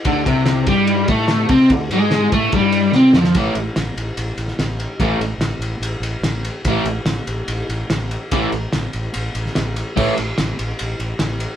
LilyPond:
<<
  \new Staff \with { instrumentName = "Overdriven electric guitar" } { \clef bass \time 4/4 \key a \minor \tempo 4 = 145 d8 c4 g4 a4 c'8 | d8 gis4 a8 g4 c'8 f8 | <a, e a>8 r2. r8 | <a, e a>8 r2. r8 |
<a, e a>8 r2. r8 | <a, e a>8 r2. r8 | <a, e a>8 r2. r8 | }
  \new Staff \with { instrumentName = "Fingered electric bass" } { \clef bass \time 4/4 \key a \minor d,8 c,4 g,4 a,4 c8 | d,8 gis,4 a,8 g,4 c8 f,8 | a,,8 a,,8 a,,8 a,,8 a,,8 a,,8 a,,4 | a,,8 a,,8 a,,8 a,,8 a,,8 a,,8 a,,4 |
a,,8 a,,8 a,,8 a,,8 a,,8 a,,8 a,,4 | a,,8 a,,8 a,,8 a,,8 a,,8 a,,8 a,,4 | a,,8 a,,8 a,,8 a,,8 a,,8 a,,8 a,,4 | }
  \new DrumStaff \with { instrumentName = "Drums" } \drummode { \time 4/4 <bd cymr>8 <bd cymr>8 <cymr sn>8 <bd cymr>8 cymr8 <bd cymr>8 <cymr sn>8 <bd cymr>8 | <bd cymr>8 cymr8 <cymr sn>8 <bd cymr>8 <bd cymr>8 cymr8 sn8 sn16 sn16 | <bd cymr>8 cymr8 <cymr sn>8 cymr8 cymr8 cymr16 sn16 <cymr sn>8 cymr8 | <bd cymr>8 cymr8 <cymr sn>8 cymr8 cymr8 cymr8 <cymr sn>8 cymr8 |
<bd cymr>8 cymr8 <cymr sn>8 cymr8 cymr8 cymr8 <cymr sn>8 cymr8 | <bd cymr>8 cymr8 <cymr sn>8 cymr8 cymr8 cymr16 sn16 <cymr sn>8 cymr8 | <cymc bd>8 cymr8 <cymr sn>8 cymr8 cymr8 cymr8 <cymr sn>8 cymr8 | }
>>